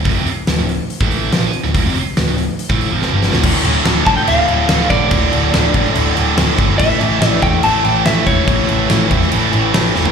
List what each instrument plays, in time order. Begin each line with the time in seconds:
0.05 picked electric bass D1, distorted electric guitar D2 A2, kick, open hi-hat
0.15 picked electric bass F1, distorted electric guitar F2 C3
0.26 muted picked electric bass stroke, muted distorted electric guitar stroke, open hi-hat
0.47 picked electric bass D1, distorted electric guitar D2 A2, snare, open hi-hat
0.58 picked electric bass D1, distorted electric guitar D2 A2
0.69 open hi-hat
0.90 open hi-hat
1.01 picked electric bass A1, distorted electric guitar A2 E3 A3, kick
1.11 open hi-hat
1.32 picked electric bass A#1, distorted electric guitar A#2 F3, snare, open hi-hat
1.43 muted picked electric bass stroke, muted distorted electric guitar stroke
1.53 open hi-hat
1.64 picked electric bass D1, distorted electric guitar D2 A2, snare
1.74 picked electric bass D1, distorted electric guitar D2 A2, kick, open hi-hat
1.86 picked electric bass F1, distorted electric guitar F2 C3
1.95 muted picked electric bass stroke, muted distorted electric guitar stroke, open hi-hat
2.17 picked electric bass D1, distorted electric guitar D2 A2, snare, open hi-hat
2.28 picked electric bass D1, distorted electric guitar D2 A2
2.38 open hi-hat
2.59 open hi-hat
2.70 picked electric bass A1, distorted electric guitar A2 E3 A3, kick
2.81 open hi-hat
2.91 picked electric bass F1, distorted electric guitar F2 C3 F3
3.02 snare
3.12 picked electric bass G1, distorted electric guitar G2 D3 G3
3.23 snare
3.33 picked electric bass D1, distorted electric guitar D2 A2, snare
3.43 picked electric bass D1, distorted electric guitar D2 A2 D3, kick, crash
3.64 picked electric bass D1, distorted electric guitar D2 A2 D3, crash
3.85 picked electric bass D1, distorted electric guitar D2 A2 D3, snare, crash
4.06 picked electric bass A1, distorted electric guitar D2 A2 D3, lead electric guitar A5, kick, crash
4.16 lead electric guitar G5, snare
4.27 picked electric bass D1, distorted electric guitar D2 A2 D3, lead electric guitar F5, crash
4.48 picked electric bass D1, distorted electric guitar D2 A2 D3, crash
4.69 picked electric bass D1, distorted electric guitar D2 A2 D3, snare, crash
4.90 picked electric bass A1, distorted electric guitar D2 A2 D3, lead electric guitar D5, kick, crash
5.11 picked electric bass D1, distorted electric guitar D2 A2 D3, kick, crash
5.32 picked electric bass D1, distorted electric guitar D2 A2 D3, crash
5.53 picked electric bass D1, distorted electric guitar D2 A2 D3, snare, crash
5.74 picked electric bass A1, distorted electric guitar D2 A2 D3, kick, crash
5.85 snare
5.95 picked electric bass D1, distorted electric guitar D2 A2 D3, crash
6.16 picked electric bass D1, distorted electric guitar D2 A2 D3, crash
6.37 picked electric bass D1, distorted electric guitar D2 A2 D3, snare, crash
6.58 picked electric bass G1, distorted electric guitar D2 A2 D3, kick, crash
6.78 picked electric bass A1, distorted electric guitar A2 E3 A3, lead electric guitar E5, kick, crash
7.00 picked electric bass A1, distorted electric guitar A2 E3 A3, crash
7.22 picked electric bass A1, distorted electric guitar A2 E3 A3, snare, crash
7.28 lead electric guitar D5
7.42 picked electric bass E2, distorted electric guitar A2 E3 A3, lead electric guitar G5, kick, crash
7.63 picked electric bass A1, distorted electric guitar A2 E3 A3, lead electric guitar A5, crash
7.84 picked electric bass A1, distorted electric guitar A2 E3 A3, lead electric guitar G5, crash
8.06 picked electric bass A1, distorted electric guitar A2 E3 A3, lead electric guitar E5, snare, crash
8.27 picked electric bass E1, distorted electric guitar A2 E3 A3, lead electric guitar C#5, kick, crash
8.48 picked electric bass A1, distorted electric guitar A2 E3 A3, kick, crash
8.69 picked electric bass A1, distorted electric guitar A2 E3 A3, crash
8.90 picked electric bass A1, distorted electric guitar A2 E3 A3, snare, crash
9.11 picked electric bass E2, distorted electric guitar A2 E3 A3, kick, crash
9.22 snare
9.32 picked electric bass A1, distorted electric guitar A2 E3 A3, crash
9.52 picked electric bass A1, distorted electric guitar A2 E3 A3, crash
9.74 picked electric bass A1, distorted electric guitar A2 E3 A3, snare, crash
9.95 picked electric bass E1, distorted electric guitar A2 E3 A3, snare
10.05 floor tom